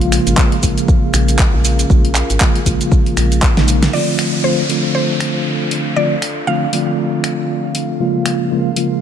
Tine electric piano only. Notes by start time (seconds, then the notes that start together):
Already playing: C#3 F3 G#3 A#3 F4
0.37 C#3 F3 G#3 A#3 F4
0.62 C#3 F3 G#3 A#3 F4
1.89 C#3 F3 G#3 A#3 F4
2.40 C#3 F3 G#3 A#3 F4
2.65 C#3 F3 G#3 A#3 F4
3.56 C#3 F3 G#3 A#3 D#4
3.93 D3 F3 A3 C4 F4
4.44 D3 F3 A3 C4 F4
4.68 D3 F3 A3 C4 F4
5.96 D3 F3 A3 C4 F4
6.47 D3 F3 A3 C4 F4
6.72 D3 F3 A3 C4 F4
8.00 C#3 F3 G#3 A#3 F4
8.50 C#3 F3 G#3 A#3 F4
8.75 C#3 F3 G#3 A#3 F4